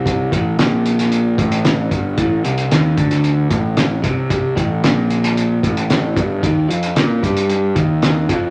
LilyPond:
<<
  \new Staff \with { instrumentName = "Clean electric guitar" } { \clef bass \time 4/4 \key g \minor \tempo 4 = 113 c8 a,8 bes,4. a,4 g,8 | a,8 c8 ees8 d4 a,4 c8~ | c8 a,8 bes,4. a,4 g,8 | ees8 f8 bes8 g4 ees4 f8 | }
  \new Staff \with { instrumentName = "Picked electric bass" } { \clef bass \time 4/4 \key g \minor c,8 a,,8 bes,,4. a,,4 g,,8 | a,,8 c,8 ees,8 d,4 a,,4 c,8~ | c,8 a,,8 bes,,4. a,,4 g,,8 | ees,8 f,8 bes,8 g,4 ees,4 f,8 | }
  \new DrumStaff \with { instrumentName = "Drums" } \drummode { \time 4/4 <hh bd>8 <hh bd>8 <hh sn>8 hh16 <hh sn>16 hh8 <hh bd>16 hh16 <hh sn>8 <hh bd>8 | <hh bd>8 hh16 hh16 <hh sn>8 <hh bd>16 <hh sn>16 hh8 <hh bd>8 <hh sn>8 <hh bd>8 | <hh bd>8 <hh bd>8 <hh sn>8 hh16 <hh sn>16 hh8 <hh bd>16 hh16 <hh sn>8 <hh bd>8 | <hh bd>8 hh16 hh16 <hh sn>8 <hh bd>16 hh16 hh8 <hh bd>8 <hh sn>8 <hh bd>8 | }
>>